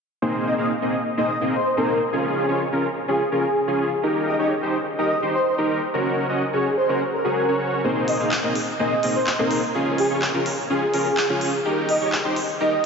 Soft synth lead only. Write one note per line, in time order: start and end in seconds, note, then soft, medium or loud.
0.46 0.54 D#5 medium
0.58 0.66 D#5 medium
1.17 1.39 D#5 medium
1.53 1.74 C5 medium
1.77 1.98 A#4 medium
2.36 2.58 G#4 medium
3.08 3.29 G#4 medium
3.32 3.67 G#4 medium
4.27 4.35 D#5 medium
4.39 4.46 D#5 medium
4.98 5.20 D#5 medium
5.34 5.55 C5 medium
6.53 6.74 G#4 medium
6.77 6.98 C5 medium
7.13 7.60 A#4 medium
8.08 8.16 D#5 medium
8.20 8.27 D#5 medium
8.79 9.01 D#5 medium
9.15 9.36 C5 medium
9.39 9.60 A#4 medium
9.98 10.20 G#4 medium
10.70 10.91 G#4 medium
10.94 11.29 G#4 medium
11.89 11.96 D#5 medium
12.01 12.08 D#5 medium
12.60 12.81 D#5 medium